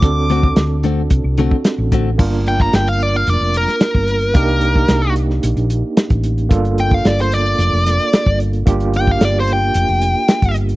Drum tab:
CC |----------------|x---------------|----------------|----------------|
HH |x-x-x-x-x-x-x-x-|-xx-xxx-x-xxx-xx|xxx-x-x-xxx-xxxx|xxx-xxx-x-xxx-xx|
SD |----o-------o---|----o------oo---|----o--o----o---|----oo----o-o---|
BD |o--o----o--o--o-|o--o---------o--|o--o---------o--|o--o---------o--|

CC |----------------|
HH |xxx-x-x-xxx-xxxx|
SD |----o-------o---|
BD |o--o---------o--|